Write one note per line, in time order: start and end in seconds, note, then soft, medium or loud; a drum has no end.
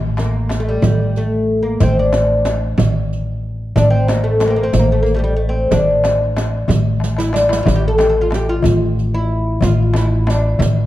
0.00 0.79 A1 medium
0.17 0.59 A#3 medium
0.17 riq soft
0.17 darbuka tek medium
0.17 frame drum medium
0.49 riq soft
0.49 darbuka tek medium
0.49 frame drum medium
0.60 0.68 A3 medium
0.69 1.18 G3 medium
0.82 1.77 A1 medium
0.82 riq medium
0.82 frame drum medium
0.82 darbuka dum medium
1.16 1.59 A3 medium
1.16 riq soft
1.63 1.82 A#3 medium
1.80 2.75 A1 medium
1.80 1.99 C4 loud
1.80 riq medium
1.80 darbuka dum medium
1.80 frame drum medium
1.99 3.40 D4 medium
2.13 riq soft
2.13 darbuka tek medium
2.13 frame drum medium
2.45 riq soft
2.45 darbuka tek medium
2.45 frame drum medium
2.78 3.72 A1 medium
2.78 riq medium
2.78 frame drum medium
2.78 darbuka dum medium
3.13 riq soft
3.76 4.70 A1 medium
3.76 3.90 D4 loud
3.76 riq medium
3.76 frame drum medium
3.76 darbuka dum medium
3.90 4.09 C4 loud
4.08 4.23 A#3 medium
4.08 riq soft
4.08 darbuka tek medium
4.08 frame drum medium
4.24 4.47 A3 medium
4.40 riq soft
4.40 darbuka tek medium
4.40 frame drum medium
4.47 4.52 A#3 medium
4.47 4.55 C4 medium
4.56 4.64 A#3 medium
4.63 4.79 C4 medium
4.73 5.68 A1 medium
4.73 riq medium
4.73 darbuka dum medium
4.73 frame drum medium
4.79 4.92 A#3 medium
4.92 5.02 A3 medium
5.03 5.14 A#3 medium
5.03 riq soft
5.14 5.19 G3 medium
5.14 5.17 A3 medium
5.19 5.23 A3 medium
5.24 5.35 G3 medium
5.36 5.50 A3 medium
5.49 5.70 C4 medium
5.71 6.65 A1 medium
5.71 6.63 D4 medium
5.71 riq medium
5.71 darbuka dum medium
5.71 frame drum medium
6.04 riq medium
6.04 darbuka tek medium
6.04 frame drum medium
6.37 riq medium
6.37 darbuka tek medium
6.37 frame drum medium
6.68 7.63 A1 medium
6.68 riq medium
6.68 darbuka dum medium
6.68 frame drum medium
7.00 riq medium
7.00 darbuka tek medium
7.17 7.33 E4 medium
7.17 riq medium
7.17 darbuka ka medium
7.33 7.48 D4 medium
7.33 riq medium
7.33 darbuka tek medium
7.49 7.62 E4 medium
7.49 riq medium
7.49 darbuka ka medium
7.63 8.60 A1 medium
7.63 7.75 F4 medium
7.63 darbuka dum medium
7.63 frame drum medium
7.68 riq medium
7.76 7.87 G4 medium
7.88 7.98 A4 medium
7.98 8.09 G4 medium
7.98 riq soft
7.98 darbuka tek medium
7.98 frame drum medium
8.09 8.21 A4 medium
8.21 8.34 F4 medium
8.31 riq soft
8.31 darbuka tek medium
8.31 frame drum medium
8.35 8.49 G4 medium
8.49 9.14 F4 loud
8.62 9.58 A1 medium
8.62 riq medium
8.62 darbuka dum medium
8.62 frame drum medium
8.99 riq soft
9.14 9.63 E4 medium
9.61 10.56 A1 medium
9.61 9.96 F4 medium
9.61 riq medium
9.61 darbuka dum medium
9.61 frame drum medium
9.94 10.29 E4 medium
9.94 riq soft
9.94 darbuka tek medium
9.94 frame drum medium
10.27 10.86 D4 medium
10.27 riq medium
10.27 darbuka tek medium
10.27 frame drum medium
10.59 10.86 A1 medium
10.59 riq medium
10.59 darbuka dum medium
10.59 frame drum medium